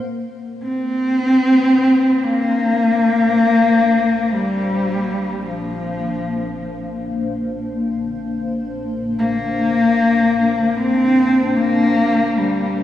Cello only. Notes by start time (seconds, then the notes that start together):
0.62 C4
2.23 A#3
4.34 G3
5.42 F3
9.19 A#3
10.77 C4
11.56 A#3
12.37 G3